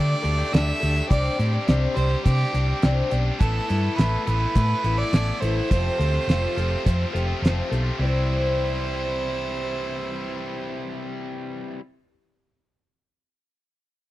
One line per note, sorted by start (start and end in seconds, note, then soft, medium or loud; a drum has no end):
0.00 0.14 D3 medium
0.00 0.22 G3 medium
0.00 0.22 A3 medium
0.00 0.23 D4 medium
0.00 0.23 G4 medium
0.00 0.24 G4 medium
0.00 0.21 A4 medium
0.00 0.54 D5 medium
0.22 0.42 D2 medium
0.22 0.51 D3 medium
0.22 0.39 A3 medium
0.22 0.38 D4 medium
0.22 0.37 G4 medium
0.22 0.51 A4 soft
0.22 closed hi-hat medium
0.38 0.52 A3 soft
0.38 0.52 D4 soft
0.38 0.53 G4 medium
0.52 0.71 D2 medium
0.52 0.80 D3 medium
0.52 0.80 G3 medium
0.52 0.80 A3 medium
0.52 0.81 D4 medium
0.52 0.81 G4 medium
0.52 0.79 A4 medium
0.52 1.08 E5 medium
0.52 snare loud
0.52 closed hi-hat medium
0.80 1.00 D2 medium
0.80 1.08 D3 medium
0.80 0.96 A3 medium
0.80 0.95 D4 medium
0.80 0.94 G4 medium
0.80 1.09 A4 medium
0.80 closed hi-hat medium
0.96 1.09 A3 medium
0.96 1.08 D4 medium
0.96 1.08 G4 medium
1.09 1.28 C2 medium
1.09 1.65 C3 medium
1.09 1.37 G3 medium
1.09 1.38 C4 medium
1.09 1.38 D4 medium
1.09 1.39 G4 medium
1.09 1.62 D5 medium
1.09 kick loud
1.09 closed hi-hat medium
1.38 1.57 A2 medium
1.38 1.66 G3 medium
1.38 1.53 C4 medium
1.38 1.52 D4 medium
1.38 1.51 G4 medium
1.38 closed hi-hat soft
1.52 1.66 C4 medium
1.52 1.67 D4 medium
1.52 1.67 G4 medium
1.66 1.86 C2 medium
1.66 2.24 C3 medium
1.66 1.94 G3 medium
1.66 1.94 C4 medium
1.66 1.95 D4 medium
1.66 1.96 G4 medium
1.66 snare loud
1.66 closed hi-hat medium
1.94 2.14 C2 medium
1.94 2.38 G3 medium
1.94 2.11 C4 medium
1.94 2.10 D4 medium
1.94 2.08 G4 medium
1.94 2.22 C5 medium
1.94 closed hi-hat medium
2.10 2.53 C4 medium
2.10 2.53 D4 medium
2.10 2.54 G4 medium
2.24 2.44 C3 medium
2.24 2.53 G3 medium
2.24 2.54 C4 medium
2.24 2.53 D4 medium
2.24 2.78 G4 medium
2.24 2.51 G4 medium
2.24 kick medium
2.24 closed hi-hat medium
2.53 2.72 C2 medium
2.53 2.81 G3 medium
2.53 2.68 C4 medium
2.53 2.68 D4 medium
2.53 2.66 G4 medium
2.53 closed hi-hat soft
2.67 2.82 C4 soft
2.67 2.82 D4 medium
2.67 2.83 G4 medium
2.82 3.01 C2 medium
2.82 3.38 C3 medium
2.82 3.10 G3 medium
2.82 3.10 C4 medium
2.82 3.11 D4 medium
2.82 3.12 G4 medium
2.82 snare loud
2.82 closed hi-hat medium
3.11 3.30 B1 medium
3.11 3.38 G3 medium
3.11 3.26 C4 medium
3.11 3.25 D4 medium
3.11 3.24 G4 medium
3.11 closed hi-hat medium
3.25 3.39 C4 medium
3.25 3.38 D4 medium
3.25 3.38 G4 medium
3.39 3.59 A1 medium
3.39 3.94 A2 medium
3.39 3.67 E3 medium
3.39 3.68 A3 medium
3.39 3.68 B3 medium
3.39 3.69 E4 medium
3.39 3.97 A4 medium
3.39 3.67 A4 medium
3.39 kick loud
3.39 closed hi-hat medium
3.68 3.88 G2 medium
3.68 3.95 E3 medium
3.68 3.82 A3 medium
3.68 3.81 B3 medium
3.68 3.80 E4 medium
3.68 3.97 A4 soft
3.68 closed hi-hat medium
3.81 3.96 A3 medium
3.81 3.96 B3 medium
3.81 3.96 E4 medium
3.95 4.16 A1 medium
3.95 4.54 A2 medium
3.95 4.24 E3 medium
3.95 4.25 A3 medium
3.95 4.25 B3 medium
3.95 4.26 E4 medium
3.95 4.25 B4 medium
3.95 closed hi-hat medium
3.99 4.25 A4 medium
3.99 snare medium
4.25 4.45 A1 medium
4.25 4.68 E3 medium
4.25 4.40 A3 medium
4.25 4.39 B3 medium
4.25 4.38 E4 medium
4.25 4.55 A4 soft
4.25 4.99 B4 medium
4.25 closed hi-hat medium
4.39 4.82 A3 medium
4.39 4.83 B3 medium
4.39 4.84 E4 medium
4.55 4.73 A2 medium
4.55 4.84 A3 medium
4.55 4.84 B3 soft
4.55 4.84 E4 medium
4.55 4.83 A4 medium
4.55 kick medium
4.55 closed hi-hat medium
4.83 5.02 A1 medium
4.83 5.11 E3 medium
4.83 4.98 A3 medium
4.83 4.98 B3 medium
4.83 4.97 E4 medium
4.83 5.12 A4 soft
4.83 closed hi-hat soft
4.97 5.12 A3 medium
4.97 5.12 B3 soft
4.97 5.13 E4 medium
4.97 5.42 D5 medium
5.12 5.31 A1 medium
5.12 5.68 A2 medium
5.12 5.39 E3 medium
5.12 5.41 A3 medium
5.12 5.41 B3 medium
5.12 5.42 E4 medium
5.12 5.41 A4 medium
5.12 snare medium
5.12 closed hi-hat medium
5.41 5.60 A1 medium
5.41 5.68 E3 medium
5.41 5.57 A3 medium
5.41 5.56 B3 medium
5.41 5.55 E4 medium
5.41 5.70 A4 medium
5.41 7.71 C5 medium
5.41 closed hi-hat medium
5.56 5.69 A3 soft
5.56 5.69 B3 medium
5.56 5.68 E4 medium
5.69 5.89 F1 medium
5.69 6.26 F2 medium
5.69 6.27 C3 medium
5.69 5.98 F3 medium
5.69 5.99 A3 medium
5.69 5.99 C4 medium
5.69 6.00 F4 medium
5.69 5.99 G4 medium
5.69 5.97 A4 medium
5.69 kick medium
5.69 closed hi-hat medium
5.98 6.17 D2 medium
5.98 6.14 F3 medium
5.98 6.13 A3 medium
5.98 6.12 C4 medium
5.98 6.12 F4 medium
5.98 6.28 G4 soft
5.98 6.27 A4 soft
5.98 closed hi-hat medium
6.13 6.27 F3 soft
6.13 6.27 A3 medium
6.13 6.28 C4 medium
6.13 6.28 F4 medium
6.27 6.45 F1 medium
6.27 6.85 F2 medium
6.27 6.85 C3 medium
6.27 6.54 F3 medium
6.27 6.55 A3 medium
6.27 6.56 C4 medium
6.27 6.56 F4 medium
6.27 6.57 G4 medium
6.27 6.56 A4 medium
6.27 snare medium
6.27 closed hi-hat medium
6.56 6.75 F1 medium
6.56 6.70 F3 medium
6.56 6.70 A3 medium
6.56 6.69 C4 medium
6.56 6.68 F4 medium
6.56 6.87 G4 soft
6.56 6.86 A4 soft
6.56 closed hi-hat soft
6.70 7.11 F3 soft
6.70 7.12 A3 medium
6.70 7.12 C4 medium
6.70 7.13 F4 medium
6.85 7.04 F2 medium
6.85 7.14 F3 soft
6.85 7.15 C4 medium
6.85 7.14 G4 medium
6.85 7.12 A4 medium
6.85 kick medium
6.85 closed hi-hat medium
7.12 7.32 F1 medium
7.12 7.27 F3 medium
7.12 7.26 A3 medium
7.12 7.26 C4 medium
7.12 7.25 F4 medium
7.12 7.44 G4 soft
7.12 7.42 A4 soft
7.16 closed hi-hat soft
7.26 7.41 F3 soft
7.26 7.41 A3 soft
7.26 7.42 C4 medium
7.26 7.43 F4 medium
7.41 7.60 F1 medium
7.41 7.98 F2 medium
7.41 7.96 C3 medium
7.41 7.67 F3 medium
7.41 7.68 A3 medium
7.41 7.69 C4 medium
7.41 7.69 F4 medium
7.41 7.72 G4 medium
7.41 closed hi-hat medium
7.46 7.70 A4 medium
7.46 snare medium
7.68 7.90 B1 medium
7.68 7.84 F3 medium
7.68 7.83 A3 medium
7.68 7.83 C4 medium
7.68 7.82 F4 medium
7.68 8.00 A4 soft
7.73 8.01 G4 soft
7.73 closed hi-hat soft
7.83 7.98 F3 soft
7.83 7.98 A3 soft
7.83 7.98 C4 medium
7.83 7.97 F4 medium
7.97 11.76 C2 medium
7.97 11.79 C3 medium
7.97 11.80 E3 medium
7.97 11.81 G3 medium
7.97 11.81 C4 medium
7.97 11.07 C5 medium
8.02 11.82 E4 medium
8.02 11.83 C5 medium